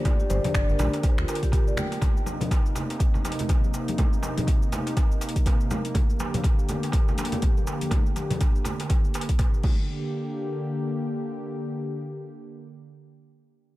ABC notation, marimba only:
X:1
M:4/4
L:1/16
Q:"Swing 16ths" 1/4=122
K:Gm
V:1 name="Marimba"
z G c z D B D z c F B G G d G z | z16 | z16 | z16 |
z16 | z16 | z16 |]